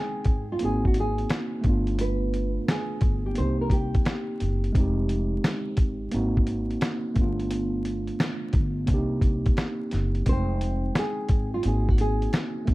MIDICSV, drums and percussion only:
0, 0, Header, 1, 2, 480
1, 0, Start_track
1, 0, Key_signature, -4, "minor"
1, 0, Tempo, 689655
1, 1386, Time_signature, 4, 2, 24, 8
1, 8868, End_track
2, 0, Start_track
2, 0, Title_t, "Drums"
2, 171, Note_on_c, 9, 42, 64
2, 178, Note_on_c, 9, 36, 100
2, 241, Note_off_c, 9, 42, 0
2, 248, Note_off_c, 9, 36, 0
2, 412, Note_on_c, 9, 42, 69
2, 482, Note_off_c, 9, 42, 0
2, 592, Note_on_c, 9, 36, 84
2, 655, Note_on_c, 9, 42, 68
2, 661, Note_off_c, 9, 36, 0
2, 725, Note_off_c, 9, 42, 0
2, 824, Note_on_c, 9, 42, 35
2, 893, Note_off_c, 9, 42, 0
2, 901, Note_on_c, 9, 42, 67
2, 908, Note_on_c, 9, 38, 100
2, 971, Note_off_c, 9, 42, 0
2, 977, Note_off_c, 9, 38, 0
2, 1139, Note_on_c, 9, 42, 55
2, 1144, Note_on_c, 9, 36, 97
2, 1209, Note_off_c, 9, 42, 0
2, 1213, Note_off_c, 9, 36, 0
2, 1301, Note_on_c, 9, 42, 33
2, 1371, Note_off_c, 9, 42, 0
2, 1383, Note_on_c, 9, 42, 89
2, 1452, Note_off_c, 9, 42, 0
2, 1627, Note_on_c, 9, 42, 56
2, 1696, Note_off_c, 9, 42, 0
2, 1868, Note_on_c, 9, 38, 119
2, 1871, Note_on_c, 9, 42, 91
2, 1938, Note_off_c, 9, 38, 0
2, 1941, Note_off_c, 9, 42, 0
2, 2093, Note_on_c, 9, 42, 66
2, 2099, Note_on_c, 9, 36, 101
2, 2163, Note_off_c, 9, 42, 0
2, 2169, Note_off_c, 9, 36, 0
2, 2334, Note_on_c, 9, 42, 72
2, 2404, Note_off_c, 9, 42, 0
2, 2574, Note_on_c, 9, 36, 88
2, 2583, Note_on_c, 9, 42, 70
2, 2643, Note_off_c, 9, 36, 0
2, 2652, Note_off_c, 9, 42, 0
2, 2746, Note_on_c, 9, 42, 35
2, 2748, Note_on_c, 9, 36, 96
2, 2816, Note_off_c, 9, 42, 0
2, 2817, Note_off_c, 9, 36, 0
2, 2822, Note_on_c, 9, 42, 74
2, 2828, Note_on_c, 9, 38, 103
2, 2891, Note_off_c, 9, 42, 0
2, 2898, Note_off_c, 9, 38, 0
2, 3064, Note_on_c, 9, 42, 55
2, 3134, Note_off_c, 9, 42, 0
2, 3229, Note_on_c, 9, 42, 35
2, 3298, Note_off_c, 9, 42, 0
2, 3304, Note_on_c, 9, 36, 105
2, 3307, Note_on_c, 9, 42, 83
2, 3374, Note_off_c, 9, 36, 0
2, 3377, Note_off_c, 9, 42, 0
2, 3543, Note_on_c, 9, 42, 58
2, 3613, Note_off_c, 9, 42, 0
2, 3788, Note_on_c, 9, 38, 115
2, 3791, Note_on_c, 9, 42, 91
2, 3857, Note_off_c, 9, 38, 0
2, 3861, Note_off_c, 9, 42, 0
2, 4014, Note_on_c, 9, 42, 68
2, 4020, Note_on_c, 9, 36, 98
2, 4084, Note_off_c, 9, 42, 0
2, 4090, Note_off_c, 9, 36, 0
2, 4256, Note_on_c, 9, 42, 78
2, 4325, Note_off_c, 9, 42, 0
2, 4434, Note_on_c, 9, 36, 85
2, 4501, Note_on_c, 9, 42, 69
2, 4503, Note_off_c, 9, 36, 0
2, 4571, Note_off_c, 9, 42, 0
2, 4667, Note_on_c, 9, 42, 32
2, 4737, Note_off_c, 9, 42, 0
2, 4741, Note_on_c, 9, 42, 73
2, 4747, Note_on_c, 9, 38, 106
2, 4810, Note_off_c, 9, 42, 0
2, 4817, Note_off_c, 9, 38, 0
2, 4980, Note_on_c, 9, 42, 52
2, 4984, Note_on_c, 9, 36, 97
2, 5050, Note_off_c, 9, 42, 0
2, 5054, Note_off_c, 9, 36, 0
2, 5147, Note_on_c, 9, 42, 35
2, 5217, Note_off_c, 9, 42, 0
2, 5224, Note_on_c, 9, 42, 83
2, 5294, Note_off_c, 9, 42, 0
2, 5464, Note_on_c, 9, 42, 58
2, 5533, Note_off_c, 9, 42, 0
2, 5620, Note_on_c, 9, 42, 32
2, 5689, Note_off_c, 9, 42, 0
2, 5707, Note_on_c, 9, 38, 117
2, 5710, Note_on_c, 9, 42, 85
2, 5777, Note_off_c, 9, 38, 0
2, 5780, Note_off_c, 9, 42, 0
2, 5935, Note_on_c, 9, 42, 65
2, 5940, Note_on_c, 9, 36, 100
2, 6005, Note_off_c, 9, 42, 0
2, 6010, Note_off_c, 9, 36, 0
2, 6175, Note_on_c, 9, 42, 78
2, 6182, Note_on_c, 9, 36, 87
2, 6244, Note_off_c, 9, 42, 0
2, 6251, Note_off_c, 9, 36, 0
2, 6413, Note_on_c, 9, 36, 83
2, 6418, Note_on_c, 9, 42, 67
2, 6483, Note_off_c, 9, 36, 0
2, 6487, Note_off_c, 9, 42, 0
2, 6582, Note_on_c, 9, 42, 34
2, 6587, Note_on_c, 9, 36, 93
2, 6652, Note_off_c, 9, 42, 0
2, 6656, Note_off_c, 9, 36, 0
2, 6660, Note_on_c, 9, 42, 66
2, 6666, Note_on_c, 9, 38, 100
2, 6730, Note_off_c, 9, 42, 0
2, 6736, Note_off_c, 9, 38, 0
2, 6899, Note_on_c, 9, 42, 52
2, 6909, Note_on_c, 9, 38, 36
2, 6969, Note_off_c, 9, 42, 0
2, 6978, Note_off_c, 9, 38, 0
2, 7063, Note_on_c, 9, 42, 33
2, 7132, Note_off_c, 9, 42, 0
2, 7140, Note_on_c, 9, 42, 87
2, 7144, Note_on_c, 9, 36, 99
2, 7210, Note_off_c, 9, 42, 0
2, 7214, Note_off_c, 9, 36, 0
2, 7385, Note_on_c, 9, 42, 60
2, 7454, Note_off_c, 9, 42, 0
2, 7624, Note_on_c, 9, 38, 115
2, 7627, Note_on_c, 9, 42, 88
2, 7693, Note_off_c, 9, 38, 0
2, 7697, Note_off_c, 9, 42, 0
2, 7855, Note_on_c, 9, 42, 67
2, 7860, Note_on_c, 9, 36, 99
2, 7924, Note_off_c, 9, 42, 0
2, 7930, Note_off_c, 9, 36, 0
2, 8095, Note_on_c, 9, 42, 72
2, 8164, Note_off_c, 9, 42, 0
2, 8273, Note_on_c, 9, 36, 82
2, 8339, Note_on_c, 9, 42, 67
2, 8343, Note_off_c, 9, 36, 0
2, 8409, Note_off_c, 9, 42, 0
2, 8506, Note_on_c, 9, 42, 34
2, 8575, Note_off_c, 9, 42, 0
2, 8580, Note_on_c, 9, 42, 66
2, 8587, Note_on_c, 9, 38, 102
2, 8650, Note_off_c, 9, 42, 0
2, 8656, Note_off_c, 9, 38, 0
2, 8821, Note_on_c, 9, 42, 52
2, 8824, Note_on_c, 9, 36, 91
2, 8868, Note_off_c, 9, 36, 0
2, 8868, Note_off_c, 9, 42, 0
2, 8868, End_track
0, 0, End_of_file